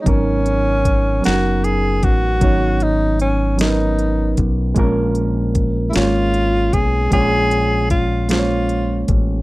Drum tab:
HH |xxxxxx|xxxxxx|xxxxxx|xxxxxx|
SD |---o--|---o--|---o--|---o--|
BD |o-o--o|o----o|o-o--o|o-o--o|